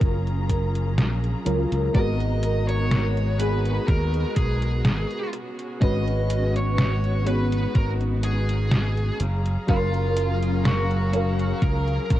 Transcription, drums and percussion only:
0.01 kick, closed hi-hat
0.27 closed hi-hat
0.49 kick, closed hi-hat
0.75 closed hi-hat
0.98 snare, closed hi-hat
1.24 closed hi-hat
1.46 closed hi-hat
1.72 closed hi-hat
1.95 kick, closed hi-hat
2.20 closed hi-hat
2.43 closed hi-hat
2.69 closed hi-hat
2.91 snare, closed hi-hat
3.17 closed hi-hat
3.40 closed hi-hat
3.65 closed hi-hat
3.88 kick, closed hi-hat
4.14 closed hi-hat
4.36 kick, closed hi-hat
4.62 closed hi-hat
4.85 snare, closed hi-hat
5.11 closed hi-hat
5.33 closed hi-hat
5.59 closed hi-hat
5.82 kick, closed hi-hat
6.07 closed hi-hat
6.30 closed hi-hat
6.56 closed hi-hat
6.78 snare, closed hi-hat
7.04 closed hi-hat
7.27 closed hi-hat
7.52 closed hi-hat
7.75 kick, closed hi-hat
8.01 closed hi-hat
8.23 closed hi-hat
8.49 closed hi-hat
8.71 snare, closed hi-hat
8.97 closed hi-hat
9.20 closed hi-hat
9.46 closed hi-hat
9.68 kick, closed hi-hat
9.94 closed hi-hat
10.17 closed hi-hat
10.43 closed hi-hat
10.65 snare, closed hi-hat
10.91 closed hi-hat
11.13 closed hi-hat
11.39 closed hi-hat
11.62 kick, closed hi-hat
11.88 closed hi-hat
12.10 kick, closed hi-hat

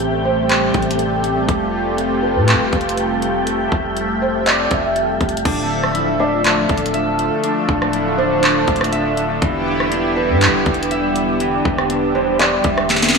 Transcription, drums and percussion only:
0.00 closed hi-hat
0.49 clap, closed hi-hat
0.74 kick, closed hi-hat
0.82 closed hi-hat
0.91 closed hi-hat
0.99 closed hi-hat
1.24 closed hi-hat
1.49 kick, closed hi-hat
1.98 closed hi-hat
2.48 clap, closed hi-hat
2.73 kick, closed hi-hat
2.81 closed hi-hat
2.89 closed hi-hat
2.97 closed hi-hat
3.22 closed hi-hat
3.47 closed hi-hat
3.72 kick
3.97 closed hi-hat
4.46 clap, closed hi-hat
4.71 kick, closed hi-hat
4.96 closed hi-hat
5.21 kick, closed hi-hat
5.29 closed hi-hat
5.37 closed hi-hat
5.45 kick, closed hi-hat, crash
5.84 cross-stick
5.95 closed hi-hat
6.44 clap, closed hi-hat
6.69 kick, closed hi-hat
6.78 closed hi-hat
6.86 closed hi-hat
6.94 closed hi-hat
7.19 closed hi-hat
7.44 closed hi-hat
7.69 kick
7.82 cross-stick
7.93 closed hi-hat
8.43 clap, closed hi-hat
8.68 kick, closed hi-hat
8.76 closed hi-hat
8.81 cross-stick, closed hi-hat
8.93 closed hi-hat
9.17 closed hi-hat
9.42 kick, closed hi-hat
9.80 cross-stick
9.92 closed hi-hat
10.41 clap, closed hi-hat
10.66 kick, closed hi-hat
10.74 closed hi-hat
10.83 closed hi-hat
10.91 closed hi-hat
11.16 closed hi-hat
11.40 closed hi-hat
11.65 kick
11.78 cross-stick
11.90 closed hi-hat
12.39 clap, closed hi-hat
12.64 kick, closed hi-hat
12.78 cross-stick
12.89 snare, closed hi-hat
12.96 snare
13.02 snare
13.09 snare
13.14 snare, closed hi-hat

